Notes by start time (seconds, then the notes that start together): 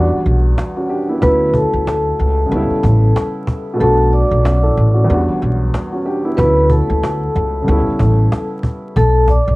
Already playing: E2 G3 B3 D4
0.00 F#4
0.12 muted upright bass stroke
0.26 B1
0.58 cajon slap
0.77 C#4 F#4
0.90 D4 G4
1.09 B3 E4
1.20 D2 F#3 A3 B4 B5, cajon bass
1.25 C#4 E4
1.54 A4 A5, cajon bass
1.73 D2
1.87 cajon slap
2.19 C#2
2.46 C#3 G3
2.51 C#2 B3 C#4, cajon slap
2.56 E4
2.70 muted upright bass stroke
2.83 A1, cajon bass
3.16 cajon slap
3.47 cajon bass, cajon slap
3.73 B2 A3
3.78 B1 B3 D4 A4 A5, cajon slap
3.83 F#4
4.13 D5 D6, cajon slap
4.31 B1
4.44 C#4 F#4, cajon slap
4.63 E4 A4
4.77 A1
4.94 C#4 F#4
5.04 E2 G3
5.09 E2 B3 D4, cajon slap
5.14 F#4
5.28 muted upright bass stroke
5.42 B1
5.74 cajon slap
5.92 C#4 F#4
6.06 D4 G4
6.25 B3 E4
6.36 D2 F#3 A3 B4 B5, cajon bass
6.41 C#4 E4
6.70 A4 A5, cajon bass
6.90 D2
7.03 cajon slap
7.36 C#2
7.62 C#3 G3
7.67 C#2 B3 C#4, cajon slap
7.72 E4
7.87 muted upright bass stroke
7.99 A1, cajon bass
8.32 cajon slap
8.63 cajon bass
8.96 B1 A4 A5, cajon bass
9.28 D5 D6, cajon bass
9.48 B1